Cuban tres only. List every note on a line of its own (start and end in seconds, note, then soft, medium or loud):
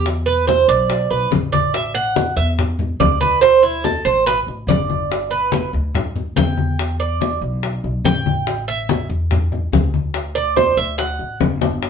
0.26 0.47 B4 medium
0.47 0.68 C5 medium
0.69 1.08 D5 loud
1.10 1.31 B4 medium
1.52 1.73 D5 medium
1.74 1.94 E5 medium
1.95 2.34 F#5 loud
2.37 2.49 E5 medium
3.00 3.20 D5 medium
3.21 3.41 B4 medium
3.41 3.62 C5 loud
3.63 3.83 E4 medium
3.84 4.05 A4 medium
4.05 4.26 C5 medium
4.26 4.39 B4 medium
4.68 5.27 D5 medium
5.31 5.70 B4 medium
6.37 6.96 G5 medium
7.00 7.39 D5 medium
8.05 8.64 G5 medium
8.68 9.07 E5 medium
10.35 10.56 D5 medium
10.57 10.77 C5 medium
10.77 10.98 E5 medium
10.98 11.37 F#5 medium